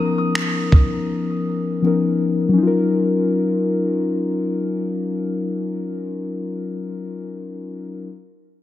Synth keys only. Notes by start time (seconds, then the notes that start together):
Already playing: F3 B3 C#4 D#4 A#4
1.82 F3 B3 C#4 D#4
1.87 A#4
2.49 F#3
2.53 C#4
2.58 D#4
2.63 F4
2.67 A#4